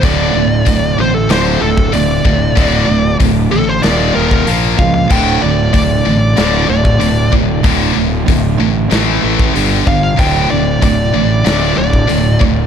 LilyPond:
<<
  \new Staff \with { instrumentName = "Lead electric guitar" } { \time 4/4 \key d \minor \tempo 4 = 95 d''4. c''16 a'16 c''8 a'8 d''4~ | d''4 r8 a'16 c''16 d''8 bes'8 r8 f''16 f''16 | g''8 d''8 d''4. d''4 r8 | r2. r8 f''16 f''16 |
g''8 d''8 d''4. d''4 r8 | }
  \new Staff \with { instrumentName = "Distorted electric guitar" } { \clef bass \time 4/4 \key d \minor <d, a, d>8 <d, a,>8 <d, a,>8 <d, a,>8 <d, a, d>8 <d, a,>8 <d, a,>8 <d, a,>8 | <d, a, d>8 <d, a,>8 <d, a,>8 <d, a,>8 <ees, bes, ees>8 <ees, bes, ees>8 <bes, f bes>8 <bes, f>8 | <d, a, d>8 <d, a,>8 <d, a,>8 <d, a,>8 <d, a, d>8 <d, a,>8 <d, a,>8 <d, a,>8 | <d, a, d>8 <d, a,>8 <d, a,>8 <d, a,>8 <a, e a>8 <a, e a>8 <g, d g>8 <g, d>8 |
<d, a, d>8 <d, a,>8 <d, a,>8 <d, a,>8 <d, a, d>8 <d, a,>8 <d, a,>8 <d, a,>8 | }
  \new Staff \with { instrumentName = "Distorted electric guitar" } { \clef bass \time 4/4 \key d \minor <d, a, d>8 <d, a,>8 <d, a,>8 <d, a,>8 <d, a, d>8 <d, a,>8 <d, a,>8 <d, a,>8 | <d, a, d>8 <d, a,>8 <d, a,>8 <d, a,>8 <ees, bes, ees>8 <ees, bes, ees>8 <bes, f bes>8 <bes, f>8 | <d, a, d>8 <d, a,>8 <d, a,>8 <d, a,>8 <d, a, d>8 <d, a,>8 <d, a,>8 <d, a,>8 | <d, a, d>8 <d, a,>8 <d, a,>8 <d, a,>8 <a, e a>8 <a, e a>8 <g, d g>8 <g, d>8 |
<d, a, d>8 <d, a,>8 <d, a,>8 <d, a,>8 <d, a, d>8 <d, a,>8 <d, a,>8 <d, a,>8 | }
  \new Staff \with { instrumentName = "Distorted electric guitar" } { \clef bass \time 4/4 \key d \minor <d, a, d>2~ <d, a, d>8 <d, a, d>8 <d, a, d>4 | <d, a, d>2 <ees, bes, ees>4 <bes, f bes>4 | <d, a, d>2~ <d, a, d>8 <d, a, d>8 <d, a, d>4 | <d, a, d>2 <a, e a>4 <g, d g>4 |
<d, a, d>2~ <d, a, d>8 <d, a, d>8 <d, a, d>4 | }
  \new Staff \with { instrumentName = "Fingered electric bass" } { \clef bass \time 4/4 \key d \minor d,,8 d,,8 d,,8 a,,8 d,,8 d,,8 d,,8 d,,8 | d,,8 d,,8 d,,8 a,,8 ees,,8 ees,,8 bes,,8 cis,8 | d,,8 d,,8 d,,8 a,,8 d,,8 d,,8 d,,8 d,,8 | d,,8 d,,8 d,,8 a,,8 a,,8 a,,8 g,,8 g,,8 |
d,,8 d,,8 d,,8 a,,8 d,,8 d,,8 d,,8 d,,8 | }
  \new DrumStaff \with { instrumentName = "Drums" } \drummode { \time 4/4 <hho bd>4 <hho bd>4 <hho sn>8. bd16 hho8 bd8 | <hho bd>4 <hho bd>4 <hho sn>8. bd16 hho8 bd8 | <cymc bd>4 <hho bd>4 <hho sn>8. bd16 hho8 bd8 | <hho bd>4 <hho bd>4 <hho sn>8. bd16 hho8 bd8 |
<hho bd>4 <hho bd>4 <hho sn>8. bd16 hho8 bd8 | }
>>